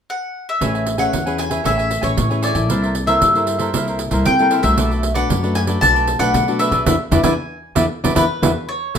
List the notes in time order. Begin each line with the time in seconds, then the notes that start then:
0.10 F#5
0.49 E5
0.61 A1 A3 C#4 G#4 A4 B4 C#5 E5 G#5, pandeiro
0.74 C#5 E5 G#5, pandeiro
0.86 muted cavaquinho stroke, pandeiro
0.98 C#4 G#4 B4 C#5 E5 F#5 G#5, pandeiro
1.13 E2 E3, pandeiro
1.26 C#4 G#4 B4 C#5 E5 G#5, pandeiro
1.38 G#5, pandeiro
1.50 C#4 G#4 B4 C#5 E5 G#5, pandeiro
1.64 A1 A3 C#4 G#4 A4 B4 C#5 E5 G#5, pandeiro
1.78 C#5 E5 G#5, pandeiro
1.90 muted cavaquinho stroke, pandeiro
2.01 A1 C#4 G#4 B4 C#5 E5 G#5, pandeiro
2.17 A2 E3, pandeiro
2.30 C#4 G#4 B4 C#5 E5 G#5, pandeiro
2.42 A4 C#5 D5 E5 G#5, pandeiro
2.55 A1 A#3 E4 A4 C#5 E5 G#5, pandeiro
2.69 C2 C3 E4 A#4 C5 E5, pandeiro
2.82 A#4 C5 E5, pandeiro
2.95 pandeiro
3.06 A#3 E4 A4 A#4 C5 E5, pandeiro
3.21 G2 G3, pandeiro
3.35 A#3 E4 A4 A#4 C5 E5, pandeiro
3.47 pandeiro
3.59 A#3 E4 A4 A#4 C5 E5, pandeiro
3.73 C2 C3 A#3 E4 A4 A#4 C5 E5, pandeiro
3.87 A#4 C5 E5, pandeiro
3.99 muted cavaquinho stroke, pandeiro
4.11 C2 A#3 E4 A4 A#4 C5 E5, pandeiro
4.25 C3 G3 G5, pandeiro
4.39 A#3 E4 A4 A#4 C5 E5, pandeiro
4.51 E4 A#4 C5 E5, pandeiro
4.63 C2 A3 D4 F#4 A#4 C5 E5, pandeiro
4.77 B1 B2 D4 A4 B4 D5, pandeiro
4.91 A4 B4 D5, pandeiro
5.03 muted cavaquinho stroke, pandeiro
5.14 A3 D4 F#4 A4 B4 D5 F#5, pandeiro
5.30 F#2 F#3, pandeiro
5.43 A3 D4 F#4 A4 B4 D5, pandeiro
5.55 G#5, pandeiro
5.67 A3 D4 F#4 A4 B4 D5, pandeiro
5.81 B1 B2 A3 D4 F#4 A4 B4 D5 A5, pandeiro
5.95 A4 B4 D5, pandeiro
6.07 muted cavaquinho stroke, pandeiro
6.19 B1 A3 D4 F#4 A4 B4 D5 F#5, pandeiro
6.34 B2 F#3, pandeiro
6.48 A3 D4 F#4 A4 B4 D5, pandeiro
6.59 D4 A4 B4 D5 E5, pandeiro
6.71 B1 D4 G#4 A4 B4 D5, pandeiro
6.86 E2 B3 D4 E4 B4 D5 E5, pandeiro
7.11 E2 B3 D4 E4 B4 D5 E5, pandeiro
7.23 E2 B3 D4 E4 B4 D5 E5 G#5, pandeiro
7.75 E2 B3 D4 E4 B4 D5 E5, pandeiro
8.04 E2 B3 D4 E4 B4 D5 E5, pandeiro
8.15 E2 B3 D4 E4 B4 D5 E5, pandeiro
8.42 E2 B3 D4 E4 B4 D5 E5, pandeiro
8.69 C#5
8.94 A1 A3 A4 C#5, pandeiro